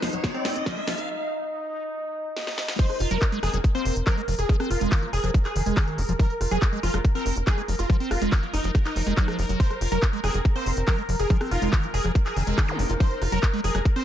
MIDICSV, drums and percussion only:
0, 0, Header, 1, 2, 480
1, 0, Start_track
1, 0, Tempo, 425532
1, 1227, Time_signature, 4, 2, 24, 8
1, 15842, End_track
2, 0, Start_track
2, 0, Title_t, "Drums"
2, 28, Note_on_c, 9, 38, 79
2, 28, Note_on_c, 9, 46, 112
2, 140, Note_off_c, 9, 38, 0
2, 140, Note_off_c, 9, 46, 0
2, 148, Note_on_c, 9, 42, 50
2, 260, Note_off_c, 9, 42, 0
2, 267, Note_on_c, 9, 36, 125
2, 268, Note_on_c, 9, 38, 82
2, 268, Note_on_c, 9, 42, 51
2, 380, Note_off_c, 9, 36, 0
2, 381, Note_off_c, 9, 38, 0
2, 381, Note_off_c, 9, 42, 0
2, 388, Note_on_c, 9, 42, 26
2, 501, Note_off_c, 9, 42, 0
2, 507, Note_on_c, 9, 38, 87
2, 507, Note_on_c, 9, 46, 113
2, 620, Note_off_c, 9, 38, 0
2, 620, Note_off_c, 9, 46, 0
2, 628, Note_on_c, 9, 42, 52
2, 740, Note_off_c, 9, 42, 0
2, 748, Note_on_c, 9, 36, 120
2, 748, Note_on_c, 9, 38, 87
2, 748, Note_on_c, 9, 42, 53
2, 860, Note_off_c, 9, 36, 0
2, 860, Note_off_c, 9, 38, 0
2, 860, Note_off_c, 9, 42, 0
2, 868, Note_on_c, 9, 42, 27
2, 980, Note_off_c, 9, 42, 0
2, 988, Note_on_c, 9, 38, 90
2, 988, Note_on_c, 9, 46, 109
2, 1100, Note_off_c, 9, 38, 0
2, 1100, Note_off_c, 9, 46, 0
2, 1108, Note_on_c, 9, 42, 52
2, 1220, Note_off_c, 9, 42, 0
2, 2668, Note_on_c, 9, 38, 61
2, 2781, Note_off_c, 9, 38, 0
2, 2788, Note_on_c, 9, 38, 64
2, 2901, Note_off_c, 9, 38, 0
2, 2908, Note_on_c, 9, 38, 90
2, 3021, Note_off_c, 9, 38, 0
2, 3028, Note_on_c, 9, 38, 85
2, 3141, Note_off_c, 9, 38, 0
2, 3148, Note_on_c, 9, 36, 122
2, 3148, Note_on_c, 9, 42, 56
2, 3148, Note_on_c, 9, 49, 96
2, 3260, Note_off_c, 9, 36, 0
2, 3261, Note_off_c, 9, 42, 0
2, 3261, Note_off_c, 9, 49, 0
2, 3268, Note_on_c, 9, 37, 40
2, 3268, Note_on_c, 9, 42, 27
2, 3381, Note_off_c, 9, 37, 0
2, 3381, Note_off_c, 9, 42, 0
2, 3388, Note_on_c, 9, 46, 104
2, 3501, Note_off_c, 9, 46, 0
2, 3508, Note_on_c, 9, 42, 57
2, 3621, Note_off_c, 9, 42, 0
2, 3628, Note_on_c, 9, 36, 123
2, 3628, Note_on_c, 9, 39, 127
2, 3628, Note_on_c, 9, 42, 58
2, 3741, Note_off_c, 9, 36, 0
2, 3741, Note_off_c, 9, 39, 0
2, 3741, Note_off_c, 9, 42, 0
2, 3748, Note_on_c, 9, 42, 28
2, 3861, Note_off_c, 9, 42, 0
2, 3868, Note_on_c, 9, 37, 77
2, 3868, Note_on_c, 9, 46, 106
2, 3981, Note_off_c, 9, 37, 0
2, 3981, Note_off_c, 9, 46, 0
2, 3988, Note_on_c, 9, 42, 58
2, 4101, Note_off_c, 9, 42, 0
2, 4108, Note_on_c, 9, 36, 116
2, 4108, Note_on_c, 9, 42, 58
2, 4221, Note_off_c, 9, 36, 0
2, 4221, Note_off_c, 9, 42, 0
2, 4228, Note_on_c, 9, 42, 30
2, 4341, Note_off_c, 9, 42, 0
2, 4348, Note_on_c, 9, 46, 108
2, 4461, Note_off_c, 9, 46, 0
2, 4468, Note_on_c, 9, 42, 56
2, 4581, Note_off_c, 9, 42, 0
2, 4588, Note_on_c, 9, 36, 119
2, 4588, Note_on_c, 9, 37, 39
2, 4588, Note_on_c, 9, 39, 127
2, 4588, Note_on_c, 9, 42, 54
2, 4701, Note_off_c, 9, 36, 0
2, 4701, Note_off_c, 9, 37, 0
2, 4701, Note_off_c, 9, 39, 0
2, 4701, Note_off_c, 9, 42, 0
2, 4708, Note_on_c, 9, 42, 27
2, 4821, Note_off_c, 9, 42, 0
2, 4828, Note_on_c, 9, 46, 105
2, 4941, Note_off_c, 9, 46, 0
2, 4948, Note_on_c, 9, 42, 59
2, 5061, Note_off_c, 9, 42, 0
2, 5068, Note_on_c, 9, 36, 127
2, 5068, Note_on_c, 9, 42, 51
2, 5181, Note_off_c, 9, 36, 0
2, 5181, Note_off_c, 9, 42, 0
2, 5188, Note_on_c, 9, 37, 75
2, 5188, Note_on_c, 9, 42, 28
2, 5301, Note_off_c, 9, 37, 0
2, 5301, Note_off_c, 9, 42, 0
2, 5308, Note_on_c, 9, 46, 112
2, 5421, Note_off_c, 9, 46, 0
2, 5428, Note_on_c, 9, 42, 53
2, 5541, Note_off_c, 9, 42, 0
2, 5548, Note_on_c, 9, 36, 121
2, 5548, Note_on_c, 9, 39, 127
2, 5548, Note_on_c, 9, 42, 57
2, 5661, Note_off_c, 9, 36, 0
2, 5661, Note_off_c, 9, 39, 0
2, 5661, Note_off_c, 9, 42, 0
2, 5668, Note_on_c, 9, 42, 27
2, 5781, Note_off_c, 9, 42, 0
2, 5788, Note_on_c, 9, 46, 108
2, 5901, Note_off_c, 9, 46, 0
2, 5908, Note_on_c, 9, 37, 37
2, 5908, Note_on_c, 9, 42, 54
2, 6021, Note_off_c, 9, 37, 0
2, 6021, Note_off_c, 9, 42, 0
2, 6028, Note_on_c, 9, 36, 120
2, 6028, Note_on_c, 9, 42, 55
2, 6140, Note_off_c, 9, 36, 0
2, 6141, Note_off_c, 9, 42, 0
2, 6149, Note_on_c, 9, 39, 39
2, 6149, Note_on_c, 9, 42, 27
2, 6261, Note_off_c, 9, 39, 0
2, 6261, Note_off_c, 9, 42, 0
2, 6268, Note_on_c, 9, 46, 112
2, 6381, Note_off_c, 9, 46, 0
2, 6389, Note_on_c, 9, 42, 57
2, 6501, Note_off_c, 9, 42, 0
2, 6508, Note_on_c, 9, 36, 125
2, 6509, Note_on_c, 9, 37, 80
2, 6509, Note_on_c, 9, 39, 127
2, 6509, Note_on_c, 9, 42, 55
2, 6620, Note_off_c, 9, 36, 0
2, 6621, Note_off_c, 9, 37, 0
2, 6621, Note_off_c, 9, 39, 0
2, 6621, Note_off_c, 9, 42, 0
2, 6629, Note_on_c, 9, 42, 27
2, 6741, Note_off_c, 9, 42, 0
2, 6748, Note_on_c, 9, 46, 114
2, 6861, Note_off_c, 9, 46, 0
2, 6868, Note_on_c, 9, 42, 55
2, 6981, Note_off_c, 9, 42, 0
2, 6988, Note_on_c, 9, 36, 127
2, 6988, Note_on_c, 9, 42, 53
2, 7100, Note_off_c, 9, 36, 0
2, 7101, Note_off_c, 9, 42, 0
2, 7108, Note_on_c, 9, 42, 26
2, 7221, Note_off_c, 9, 42, 0
2, 7228, Note_on_c, 9, 37, 37
2, 7228, Note_on_c, 9, 46, 114
2, 7341, Note_off_c, 9, 37, 0
2, 7341, Note_off_c, 9, 46, 0
2, 7348, Note_on_c, 9, 42, 51
2, 7461, Note_off_c, 9, 42, 0
2, 7467, Note_on_c, 9, 36, 127
2, 7468, Note_on_c, 9, 39, 127
2, 7468, Note_on_c, 9, 42, 53
2, 7580, Note_off_c, 9, 36, 0
2, 7581, Note_off_c, 9, 39, 0
2, 7581, Note_off_c, 9, 42, 0
2, 7588, Note_on_c, 9, 42, 26
2, 7701, Note_off_c, 9, 42, 0
2, 7708, Note_on_c, 9, 46, 109
2, 7821, Note_off_c, 9, 46, 0
2, 7828, Note_on_c, 9, 37, 76
2, 7828, Note_on_c, 9, 42, 53
2, 7941, Note_off_c, 9, 37, 0
2, 7941, Note_off_c, 9, 42, 0
2, 7947, Note_on_c, 9, 36, 126
2, 7948, Note_on_c, 9, 42, 51
2, 8060, Note_off_c, 9, 36, 0
2, 8061, Note_off_c, 9, 42, 0
2, 8068, Note_on_c, 9, 42, 26
2, 8181, Note_off_c, 9, 42, 0
2, 8188, Note_on_c, 9, 46, 115
2, 8301, Note_off_c, 9, 46, 0
2, 8308, Note_on_c, 9, 42, 52
2, 8421, Note_off_c, 9, 42, 0
2, 8427, Note_on_c, 9, 36, 127
2, 8428, Note_on_c, 9, 39, 127
2, 8428, Note_on_c, 9, 42, 51
2, 8540, Note_off_c, 9, 36, 0
2, 8541, Note_off_c, 9, 39, 0
2, 8541, Note_off_c, 9, 42, 0
2, 8548, Note_on_c, 9, 37, 38
2, 8548, Note_on_c, 9, 42, 27
2, 8661, Note_off_c, 9, 37, 0
2, 8661, Note_off_c, 9, 42, 0
2, 8668, Note_on_c, 9, 46, 114
2, 8781, Note_off_c, 9, 46, 0
2, 8788, Note_on_c, 9, 42, 54
2, 8901, Note_off_c, 9, 42, 0
2, 8907, Note_on_c, 9, 36, 127
2, 8908, Note_on_c, 9, 42, 48
2, 9020, Note_off_c, 9, 36, 0
2, 9021, Note_off_c, 9, 42, 0
2, 9028, Note_on_c, 9, 42, 26
2, 9141, Note_off_c, 9, 42, 0
2, 9148, Note_on_c, 9, 37, 75
2, 9148, Note_on_c, 9, 46, 112
2, 9261, Note_off_c, 9, 37, 0
2, 9261, Note_off_c, 9, 46, 0
2, 9268, Note_on_c, 9, 42, 54
2, 9381, Note_off_c, 9, 42, 0
2, 9387, Note_on_c, 9, 36, 127
2, 9388, Note_on_c, 9, 39, 127
2, 9388, Note_on_c, 9, 42, 56
2, 9500, Note_off_c, 9, 36, 0
2, 9501, Note_off_c, 9, 39, 0
2, 9501, Note_off_c, 9, 42, 0
2, 9508, Note_on_c, 9, 42, 26
2, 9621, Note_off_c, 9, 42, 0
2, 9628, Note_on_c, 9, 46, 116
2, 9741, Note_off_c, 9, 46, 0
2, 9748, Note_on_c, 9, 42, 50
2, 9861, Note_off_c, 9, 42, 0
2, 9868, Note_on_c, 9, 36, 122
2, 9868, Note_on_c, 9, 37, 41
2, 9868, Note_on_c, 9, 42, 50
2, 9980, Note_off_c, 9, 36, 0
2, 9981, Note_off_c, 9, 37, 0
2, 9981, Note_off_c, 9, 42, 0
2, 9988, Note_on_c, 9, 39, 36
2, 9988, Note_on_c, 9, 42, 26
2, 10101, Note_off_c, 9, 39, 0
2, 10101, Note_off_c, 9, 42, 0
2, 10108, Note_on_c, 9, 46, 115
2, 10221, Note_off_c, 9, 46, 0
2, 10228, Note_on_c, 9, 42, 52
2, 10341, Note_off_c, 9, 42, 0
2, 10348, Note_on_c, 9, 36, 119
2, 10348, Note_on_c, 9, 39, 119
2, 10348, Note_on_c, 9, 42, 53
2, 10460, Note_off_c, 9, 36, 0
2, 10461, Note_off_c, 9, 39, 0
2, 10461, Note_off_c, 9, 42, 0
2, 10468, Note_on_c, 9, 37, 81
2, 10468, Note_on_c, 9, 42, 24
2, 10581, Note_off_c, 9, 37, 0
2, 10581, Note_off_c, 9, 42, 0
2, 10588, Note_on_c, 9, 46, 114
2, 10701, Note_off_c, 9, 46, 0
2, 10708, Note_on_c, 9, 42, 51
2, 10821, Note_off_c, 9, 42, 0
2, 10828, Note_on_c, 9, 36, 118
2, 10828, Note_on_c, 9, 42, 48
2, 10940, Note_off_c, 9, 36, 0
2, 10941, Note_off_c, 9, 42, 0
2, 10948, Note_on_c, 9, 37, 40
2, 10948, Note_on_c, 9, 42, 25
2, 11061, Note_off_c, 9, 37, 0
2, 11061, Note_off_c, 9, 42, 0
2, 11068, Note_on_c, 9, 46, 107
2, 11181, Note_off_c, 9, 46, 0
2, 11188, Note_on_c, 9, 42, 54
2, 11301, Note_off_c, 9, 42, 0
2, 11308, Note_on_c, 9, 36, 123
2, 11308, Note_on_c, 9, 39, 121
2, 11308, Note_on_c, 9, 42, 54
2, 11420, Note_off_c, 9, 36, 0
2, 11421, Note_off_c, 9, 39, 0
2, 11421, Note_off_c, 9, 42, 0
2, 11428, Note_on_c, 9, 42, 26
2, 11541, Note_off_c, 9, 42, 0
2, 11548, Note_on_c, 9, 37, 82
2, 11548, Note_on_c, 9, 46, 109
2, 11660, Note_off_c, 9, 37, 0
2, 11660, Note_off_c, 9, 46, 0
2, 11668, Note_on_c, 9, 42, 51
2, 11780, Note_off_c, 9, 42, 0
2, 11788, Note_on_c, 9, 36, 118
2, 11788, Note_on_c, 9, 42, 53
2, 11901, Note_off_c, 9, 36, 0
2, 11901, Note_off_c, 9, 42, 0
2, 11908, Note_on_c, 9, 42, 25
2, 12020, Note_off_c, 9, 42, 0
2, 12027, Note_on_c, 9, 46, 103
2, 12140, Note_off_c, 9, 46, 0
2, 12147, Note_on_c, 9, 42, 54
2, 12260, Note_off_c, 9, 42, 0
2, 12268, Note_on_c, 9, 36, 120
2, 12268, Note_on_c, 9, 37, 41
2, 12268, Note_on_c, 9, 39, 120
2, 12268, Note_on_c, 9, 42, 52
2, 12380, Note_off_c, 9, 36, 0
2, 12381, Note_off_c, 9, 37, 0
2, 12381, Note_off_c, 9, 39, 0
2, 12381, Note_off_c, 9, 42, 0
2, 12388, Note_on_c, 9, 42, 26
2, 12501, Note_off_c, 9, 42, 0
2, 12508, Note_on_c, 9, 46, 104
2, 12620, Note_off_c, 9, 46, 0
2, 12628, Note_on_c, 9, 42, 51
2, 12741, Note_off_c, 9, 42, 0
2, 12748, Note_on_c, 9, 36, 121
2, 12748, Note_on_c, 9, 42, 54
2, 12860, Note_off_c, 9, 36, 0
2, 12861, Note_off_c, 9, 42, 0
2, 12868, Note_on_c, 9, 37, 80
2, 12868, Note_on_c, 9, 42, 27
2, 12981, Note_off_c, 9, 37, 0
2, 12981, Note_off_c, 9, 42, 0
2, 12988, Note_on_c, 9, 46, 98
2, 13101, Note_off_c, 9, 46, 0
2, 13108, Note_on_c, 9, 42, 53
2, 13221, Note_off_c, 9, 42, 0
2, 13228, Note_on_c, 9, 36, 117
2, 13228, Note_on_c, 9, 39, 121
2, 13228, Note_on_c, 9, 42, 57
2, 13340, Note_off_c, 9, 36, 0
2, 13341, Note_off_c, 9, 39, 0
2, 13341, Note_off_c, 9, 42, 0
2, 13348, Note_on_c, 9, 42, 27
2, 13461, Note_off_c, 9, 42, 0
2, 13468, Note_on_c, 9, 46, 106
2, 13581, Note_off_c, 9, 46, 0
2, 13588, Note_on_c, 9, 37, 41
2, 13588, Note_on_c, 9, 42, 53
2, 13701, Note_off_c, 9, 37, 0
2, 13701, Note_off_c, 9, 42, 0
2, 13708, Note_on_c, 9, 36, 118
2, 13708, Note_on_c, 9, 42, 54
2, 13820, Note_off_c, 9, 36, 0
2, 13821, Note_off_c, 9, 42, 0
2, 13828, Note_on_c, 9, 39, 37
2, 13828, Note_on_c, 9, 42, 27
2, 13940, Note_off_c, 9, 39, 0
2, 13940, Note_off_c, 9, 42, 0
2, 13948, Note_on_c, 9, 46, 104
2, 14061, Note_off_c, 9, 46, 0
2, 14068, Note_on_c, 9, 42, 52
2, 14181, Note_off_c, 9, 42, 0
2, 14188, Note_on_c, 9, 36, 113
2, 14188, Note_on_c, 9, 37, 81
2, 14188, Note_on_c, 9, 39, 112
2, 14188, Note_on_c, 9, 42, 53
2, 14300, Note_off_c, 9, 36, 0
2, 14301, Note_off_c, 9, 37, 0
2, 14301, Note_off_c, 9, 39, 0
2, 14301, Note_off_c, 9, 42, 0
2, 14308, Note_on_c, 9, 42, 26
2, 14421, Note_off_c, 9, 42, 0
2, 14428, Note_on_c, 9, 46, 104
2, 14541, Note_off_c, 9, 46, 0
2, 14548, Note_on_c, 9, 42, 54
2, 14661, Note_off_c, 9, 42, 0
2, 14668, Note_on_c, 9, 36, 121
2, 14668, Note_on_c, 9, 42, 55
2, 14780, Note_off_c, 9, 36, 0
2, 14781, Note_off_c, 9, 42, 0
2, 14788, Note_on_c, 9, 42, 27
2, 14901, Note_off_c, 9, 42, 0
2, 14908, Note_on_c, 9, 37, 42
2, 14908, Note_on_c, 9, 46, 95
2, 15021, Note_off_c, 9, 37, 0
2, 15021, Note_off_c, 9, 46, 0
2, 15028, Note_on_c, 9, 42, 57
2, 15141, Note_off_c, 9, 42, 0
2, 15148, Note_on_c, 9, 36, 116
2, 15148, Note_on_c, 9, 39, 125
2, 15148, Note_on_c, 9, 42, 62
2, 15260, Note_off_c, 9, 36, 0
2, 15261, Note_off_c, 9, 39, 0
2, 15261, Note_off_c, 9, 42, 0
2, 15268, Note_on_c, 9, 42, 27
2, 15381, Note_off_c, 9, 42, 0
2, 15388, Note_on_c, 9, 46, 103
2, 15501, Note_off_c, 9, 46, 0
2, 15508, Note_on_c, 9, 37, 84
2, 15508, Note_on_c, 9, 42, 54
2, 15621, Note_off_c, 9, 37, 0
2, 15621, Note_off_c, 9, 42, 0
2, 15628, Note_on_c, 9, 36, 112
2, 15628, Note_on_c, 9, 42, 54
2, 15740, Note_off_c, 9, 36, 0
2, 15741, Note_off_c, 9, 42, 0
2, 15748, Note_on_c, 9, 42, 29
2, 15842, Note_off_c, 9, 42, 0
2, 15842, End_track
0, 0, End_of_file